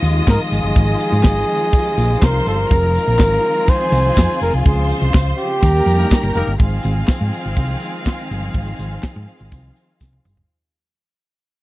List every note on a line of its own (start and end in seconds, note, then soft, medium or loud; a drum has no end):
0.00 0.20 D#2 loud
0.00 2.67 C3 medium
0.00 2.67 D#3 medium
0.00 5.58 F3 medium
0.00 5.58 G#3 medium
0.00 2.67 F4 loud
0.00 2.18 D#5 medium
0.00 2.18 D#6 loud
0.00 closed hi-hat medium
0.00 tambourine medium
0.16 closed hi-hat medium
0.27 0.36 G#2 loud
0.27 0.40 A#4 medium
0.27 kick loud
0.27 snare loud
0.27 clap loud
0.27 tambourine loud
0.40 closed hi-hat medium
0.51 0.60 G#1 medium
0.51 2.26 G#4 loud
0.51 snare soft
0.51 open hi-hat medium
0.51 tambourine soft
0.63 0.72 G1 medium
0.63 closed hi-hat soft
0.76 0.93 G#1 loud
0.76 kick loud
0.76 closed hi-hat medium
0.76 tambourine soft
0.88 closed hi-hat soft
1.00 closed hi-hat medium
1.00 tambourine medium
1.12 1.21 G#2 loud
1.12 closed hi-hat medium
1.23 1.42 G#1 medium
1.23 kick loud
1.23 snare loud
1.23 clap loud
1.23 tambourine loud
1.35 closed hi-hat soft
1.49 closed hi-hat medium
1.60 closed hi-hat medium
1.73 kick loud
1.73 closed hi-hat medium
1.73 tambourine medium
1.85 closed hi-hat soft
1.98 2.15 A#1 loud
1.98 closed hi-hat medium
1.98 tambourine medium
2.10 closed hi-hat soft
2.22 2.39 C2 loud
2.22 2.48 A#4 loud
2.22 2.70 C5 medium
2.22 2.70 C6 loud
2.22 kick loud
2.22 snare loud
2.22 clap loud
2.22 tambourine loud
2.34 closed hi-hat medium
2.46 2.63 G1 medium
2.46 3.71 A#4 loud
2.46 snare soft
2.46 open hi-hat medium
2.46 tambourine medium
2.58 closed hi-hat soft
2.70 2.96 F1 loud
2.70 4.63 D#3 medium
2.70 5.59 C4 medium
2.70 5.59 F4 loud
2.70 3.66 A#4 medium
2.70 3.66 A#5 medium
2.70 kick loud
2.70 closed hi-hat medium
2.70 tambourine soft
2.83 closed hi-hat soft
2.95 closed hi-hat medium
2.95 tambourine medium
3.07 3.16 A#1 medium
3.07 closed hi-hat medium
3.19 3.37 G#1 loud
3.19 kick loud
3.19 snare loud
3.19 clap loud
3.19 tambourine loud
3.31 closed hi-hat soft
3.45 closed hi-hat medium
3.56 closed hi-hat medium
3.68 4.64 G#4 medium
3.68 4.42 C5 loud
3.68 4.64 G#5 loud
3.68 kick loud
3.68 closed hi-hat medium
3.68 tambourine medium
3.80 closed hi-hat soft
3.92 4.09 C2 loud
3.92 closed hi-hat medium
3.92 tambourine medium
4.05 closed hi-hat medium
4.16 4.25 F2 loud
4.16 kick loud
4.16 snare loud
4.16 clap medium
4.16 tambourine loud
4.30 closed hi-hat medium
4.41 4.50 F1 medium
4.41 4.53 A#4 loud
4.41 snare soft
4.41 open hi-hat medium
4.41 tambourine medium
4.53 4.62 C2 medium
4.53 closed hi-hat soft
4.66 4.91 C#2 loud
4.66 5.62 C#3 medium
4.66 5.08 G#4 medium
4.66 5.61 C5 medium
4.66 5.61 C6 medium
4.66 kick loud
4.66 closed hi-hat medium
4.78 closed hi-hat medium
4.89 closed hi-hat medium
4.89 tambourine medium
5.02 5.10 C2 medium
5.02 closed hi-hat soft
5.14 5.31 C#2 medium
5.14 kick loud
5.14 snare loud
5.14 clap loud
5.14 tambourine loud
5.26 closed hi-hat soft
5.38 6.31 G4 loud
5.38 closed hi-hat medium
5.38 tambourine soft
5.51 closed hi-hat medium
5.62 5.80 D#2 loud
5.62 6.59 D#3 medium
5.62 6.59 G3 medium
5.62 6.59 A#3 medium
5.62 6.59 C#4 medium
5.62 6.59 G4 medium
5.62 6.58 A#4 medium
5.62 6.58 A#5 loud
5.62 kick loud
5.62 closed hi-hat medium
5.62 tambourine medium
5.75 closed hi-hat soft
5.86 6.03 F2 loud
5.86 closed hi-hat medium
5.86 tambourine medium
5.99 6.07 A#3 medium
5.99 6.07 D#4 medium
5.99 6.07 G4 medium
5.99 6.07 A#4 medium
5.99 closed hi-hat medium
6.11 kick loud
6.11 snare loud
6.11 clap medium
6.11 tambourine loud
6.23 6.32 G1 loud
6.23 closed hi-hat medium
6.34 6.44 F1 loud
6.34 6.51 A#3 medium
6.34 6.51 D#4 medium
6.34 6.51 G4 medium
6.34 6.51 A#4 loud
6.34 snare soft
6.34 open hi-hat medium
6.34 tambourine medium
6.47 6.56 G1 medium
6.47 closed hi-hat soft
6.59 6.77 G#1 loud
6.59 10.46 D#3 medium
6.59 10.45 F3 medium
6.59 10.46 G#3 medium
6.59 10.45 C4 medium
6.59 10.46 C4 medium
6.59 10.46 F4 medium
6.59 10.46 G#4 medium
6.59 10.46 F5 loud
6.59 kick loud
6.59 closed hi-hat medium
6.72 closed hi-hat soft
6.83 7.01 G#1 loud
6.83 closed hi-hat medium
6.83 tambourine medium
6.97 closed hi-hat soft
7.08 kick loud
7.08 snare loud
7.08 clap medium
7.08 tambourine loud
7.19 7.29 G#2 loud
7.19 closed hi-hat soft
7.33 open hi-hat medium
7.33 tambourine soft
7.45 7.54 G#1 medium
7.45 closed hi-hat medium
7.57 7.74 C2 loud
7.57 kick loud
7.57 closed hi-hat medium
7.57 tambourine medium
7.68 closed hi-hat soft
7.81 closed hi-hat medium
7.81 tambourine medium
7.94 closed hi-hat soft
8.05 kick medium
8.05 snare loud
8.05 clap medium
8.05 tambourine loud
8.19 closed hi-hat medium
8.29 8.48 G1 loud
8.29 snare soft
8.29 closed hi-hat medium
8.29 tambourine soft
8.42 closed hi-hat soft
8.54 8.72 G#1 loud
8.54 kick loud
8.54 closed hi-hat medium
8.54 tambourine soft
8.66 closed hi-hat soft
8.79 8.96 G#1 loud
8.79 closed hi-hat medium
8.79 tambourine medium
8.92 closed hi-hat soft
9.03 muted fingered electric bass stroke soft
9.03 kick loud
9.03 snare loud
9.03 clap medium
9.03 tambourine medium
9.14 9.24 G#2 loud
9.14 closed hi-hat soft
9.28 open hi-hat medium
9.40 9.49 G#1 medium
9.40 closed hi-hat medium
9.52 9.69 C2 medium
9.52 kick loud
9.52 closed hi-hat medium
9.52 tambourine medium
9.64 closed hi-hat soft
9.76 closed hi-hat medium
9.76 tambourine medium
9.89 closed hi-hat soft
10.00 10.18 C2 medium
10.00 kick loud
10.00 snare medium
10.00 tambourine loud
10.13 high tom medium
10.25 10.43 G1 medium
10.25 mid tom medium
10.25 tambourine soft
10.37 floor tom medium